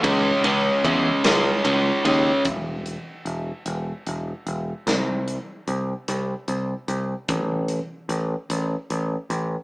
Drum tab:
RD |xxxxxx|------|------|------|
HH |------|xxxxxx|xxxxxx|xxxxxx|
SD |---o--|------|o-----|------|
BD |o-o---|o-----|------|o-----|